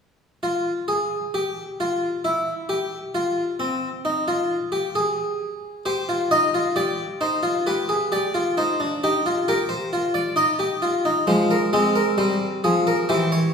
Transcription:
0.43 0.71 F4 medium
0.88 1.17 G#4 medium
1.34 1.62 G4 medium
1.80 2.08 F4 medium
2.25 2.53 E4 medium
2.69 2.98 G4 medium
3.15 3.43 F4 medium
3.60 3.88 C4 medium
4.05 4.27 D#4 medium
4.28 4.56 F4 medium
4.72 4.95 G4 medium
4.95 5.83 G#4 medium
5.86 6.08 G4 medium
5.86 6.14 C5 medium
6.09 6.30 F4 soft
6.31 6.53 D#4 medium
6.31 6.59 D#5 medium
6.54 6.76 F4 soft
6.76 7.04 G4 medium
6.76 7.04 D5 medium
7.21 7.43 D#4 medium
7.21 7.49 C5 medium
7.43 7.65 F4 medium
7.67 7.89 G4 medium
7.67 7.95 B4 medium
7.89 8.11 G#4 medium
8.12 8.34 G4 medium
8.12 8.40 D5 medium
8.34 8.56 F4 medium
8.57 8.79 D#4 medium
8.57 8.85 C5 medium
8.80 9.02 D4 medium
9.04 9.25 D#4 medium
9.04 9.31 G4 medium
9.26 9.47 F4 medium
9.48 9.76 G4 medium
9.48 9.70 A#4 medium
9.69 9.97 C5 medium
9.93 10.21 F4 medium
10.14 10.36 D5 medium
10.36 10.59 D#4 medium
10.36 11.25 D#5 medium
10.59 10.82 G4 medium
10.82 11.04 F4 medium
11.05 11.27 D#4 medium
11.27 11.56 F3 medium
11.27 11.56 G#3 medium
11.27 11.50 C5 medium
11.51 11.73 A#4 medium
11.73 12.01 G#3 medium
11.73 13.05 C4 medium
11.73 11.95 G#4 medium
11.96 12.18 A#4 medium
12.18 12.46 G3 medium
12.18 12.46 C5 medium
12.64 12.92 F3 medium
12.64 12.86 G#4 medium
12.87 13.09 A#4 medium
13.09 13.37 E3 medium
13.09 13.38 G4 medium
13.09 13.31 C5 medium
13.32 13.54 C#5 medium

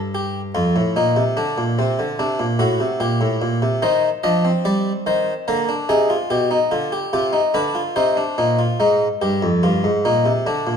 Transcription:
0.00 0.52 G2 medium
0.15 0.40 G4 medium
0.55 0.75 F2 medium
0.55 0.80 F4 medium
0.76 0.95 A2 medium
0.96 1.16 A#2 medium
0.96 1.21 D#4 medium
1.16 1.36 C3 medium
1.37 1.57 D3 medium
1.37 1.62 D4 medium
1.58 1.77 A#2 medium
1.79 1.98 C3 medium
1.79 2.04 C4 medium
1.99 2.18 D3 medium
2.19 2.39 C3 medium
2.19 2.44 D4 medium
2.39 2.59 A#2 medium
2.59 2.79 A2 medium
2.59 2.85 F#4 medium
2.80 3.00 C3 medium
3.00 3.20 A#2 medium
3.00 3.80 G4 medium
3.21 3.40 A2 medium
3.42 3.61 A#2 medium
3.62 3.82 C3 medium
3.82 4.08 D#3 medium
3.82 4.08 D#4 medium
3.82 4.08 C5 medium
4.23 4.49 F3 medium
4.23 4.43 D4 medium
4.23 4.49 D#5 medium
4.45 5.45 C4 medium
4.65 4.91 G3 medium
4.65 4.90 D5 medium
5.06 5.32 D#3 medium
5.06 5.32 C5 medium
5.48 5.74 D3 medium
5.48 5.68 A#3 medium
5.48 5.73 A#4 medium
5.69 5.89 D4 medium
5.89 6.15 C3 medium
5.89 6.09 D#4 medium
5.89 6.15 G#4 medium
6.10 6.30 F4 medium
6.30 6.56 B2 medium
6.30 6.50 G4 medium
6.51 6.71 D#4 medium
6.71 6.97 D3 medium
6.71 6.92 F4 medium
6.92 7.12 G4 medium
7.13 7.39 C3 medium
7.13 7.33 F4 medium
7.13 7.39 G4 medium
7.33 7.53 D#4 medium
7.54 7.80 D3 medium
7.54 7.75 D4 medium
7.54 7.80 B4 medium
7.75 7.95 F4 medium
7.96 8.22 C3 medium
7.96 8.16 D#4 medium
7.96 8.77 C5 medium
8.17 8.37 D4 medium
8.38 8.64 A#2 medium
8.38 8.58 D#4 medium
8.59 8.79 F4 medium
8.80 9.06 G#2 medium
8.80 9.06 D#4 medium
9.22 9.42 G2 soft
9.22 9.48 G4 medium
9.43 9.63 F2 medium
9.63 9.84 G2 medium
9.63 9.89 F4 medium
9.84 10.04 G#2 medium
10.05 10.25 A#2 medium
10.05 10.31 D#4 medium
10.25 10.45 C3 soft
10.46 10.66 D3 medium
10.46 10.72 D4 medium
10.67 10.77 A#2 medium

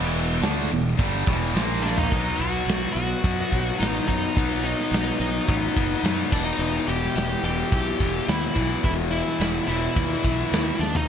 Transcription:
0.00 0.39 E1 medium
0.00 0.42 E2 medium
0.00 0.43 B2 loud
0.00 0.43 E3 loud
0.41 0.68 D2 medium
0.41 0.71 D3 medium
0.41 0.71 A3 loud
0.41 0.71 D4 loud
0.41 snare loud
0.41 crash medium
0.71 0.97 E1 medium
0.71 0.94 E2 medium
0.71 0.94 B2 medium
0.99 1.25 G1 loud
0.99 1.26 G2 medium
0.99 1.27 D3 loud
0.99 1.27 G3 loud
0.99 kick loud
0.99 crash medium
1.27 1.53 E1 loud
1.27 1.55 E2 loud
1.27 1.57 B2 loud
1.27 1.57 E3 loud
1.27 kick loud
1.55 2.07 A#1 loud
1.55 2.11 A#2 loud
1.55 2.12 F3 loud
1.55 2.12 A#3 loud
1.55 snare loud
1.55 crash medium
1.83 1.97 D4 medium
1.83 snare medium
1.97 2.41 D#4 loud
1.97 floor tom loud
2.11 2.30 B1 loud
2.11 3.50 B2 medium
2.11 3.51 F#3 loud
2.11 3.51 B3 loud
2.11 kick loud
2.11 crash loud
2.39 2.58 B1 medium
2.39 2.92 F#4 loud
2.39 ride medium
2.67 2.85 B1 medium
2.67 snare loud
2.67 ride loud
2.93 3.14 B1 medium
2.93 3.75 F#4 loud
2.93 ride medium
3.22 3.42 F#2 loud
3.22 4.33 B2 medium
3.22 4.34 F#3 medium
3.22 4.38 B3 loud
3.22 kick loud
3.22 ride loud
3.52 3.70 B1 medium
3.52 3.78 B2 medium
3.52 3.79 F#3 medium
3.52 3.81 B3 medium
3.52 kick medium
3.52 ride medium
3.79 3.99 A1 medium
3.79 4.34 B2 medium
3.79 4.34 F#3 medium
3.79 4.38 B3 medium
3.79 4.06 D#4 loud
3.79 snare loud
3.79 ride loud
4.07 4.26 F#2 medium
4.07 4.63 D#4 loud
4.07 kick medium
4.07 ride medium
4.36 4.74 B1 medium
4.36 5.74 B2 loud
4.36 5.75 F#3 loud
4.36 5.75 B3 medium
4.36 kick loud
4.36 ride loud
4.64 5.16 D#4 loud
4.64 ride medium
4.80 snare soft
4.92 5.10 B1 medium
4.92 snare loud
4.92 ride loud
5.20 5.38 B1 loud
5.20 6.32 D#4 loud
5.20 ride medium
5.46 5.67 A1 loud
5.46 6.29 B2 medium
5.46 6.30 F#3 medium
5.46 8.99 B3 loud
5.46 kick loud
5.46 ride loud
5.76 5.95 F#1 medium
5.76 6.02 B2 medium
5.76 6.03 F#3 medium
5.76 6.06 B3 medium
5.76 kick loud
5.76 ride medium
6.03 6.22 F#2 medium
6.03 6.30 B2 medium
6.03 6.31 F#3 medium
6.03 9.56 B3 loud
6.03 snare loud
6.03 ride loud
6.31 6.51 E1 loud
6.31 7.71 E2 medium
6.31 7.71 B2 loud
6.31 7.73 E3 loud
6.31 6.45 D4 medium
6.31 kick loud
6.31 crash loud
6.45 6.89 D#4 loud
6.59 6.78 E1 loud
6.87 7.07 E1 loud
6.87 7.15 G4 loud
6.87 ride medium
7.04 snare soft
7.16 7.34 E1 medium
7.16 7.43 G4 loud
7.16 snare loud
7.16 ride loud
7.42 7.62 E1 medium
7.42 8.54 E2 medium
7.42 8.54 B2 medium
7.42 8.53 E3 medium
7.42 8.31 G4 loud
7.42 ride medium
7.71 7.91 B1 loud
7.71 7.98 E2 medium
7.71 7.98 B2 medium
7.71 7.98 E3 medium
7.71 kick loud
7.71 ride loud
7.99 8.18 E1 medium
7.99 8.54 E2 medium
7.99 8.55 B2 medium
7.99 8.54 E3 medium
7.99 kick medium
7.99 ride medium
8.28 8.47 D#2 loud
8.28 8.83 E4 loud
8.28 snare loud
8.28 ride loud
8.55 8.75 B1 medium
8.55 9.94 E2 loud
8.55 9.94 B2 medium
8.55 9.95 E3 medium
8.55 kick medium
8.55 ride medium
8.84 9.21 E1 medium
8.84 8.92 E4 loud
8.84 kick loud
8.84 ride loud
9.11 9.67 E4 loud
9.11 ride medium
9.28 snare soft
9.40 9.58 E1 medium
9.40 snare loud
9.40 ride loud
9.67 9.87 E1 medium
9.67 10.80 E2 medium
9.67 10.79 B2 medium
9.67 10.78 E3 medium
9.67 10.80 E4 loud
9.67 ride medium
9.96 10.15 D#2 medium
9.96 10.23 E2 medium
9.96 10.23 B2 medium
9.96 10.24 E3 medium
9.96 kick loud
9.96 ride loud
10.24 10.43 B1 medium
10.24 10.80 E2 medium
10.24 10.80 B2 medium
10.24 10.79 E3 medium
10.24 kick medium
10.24 ride medium
10.52 10.71 D#2 medium
10.52 snare loud
10.52 ride loud
10.79 10.98 D#2 medium
10.79 10.96 D4 medium
10.79 snare medium
10.95 11.08 D#4 loud
10.95 floor tom loud

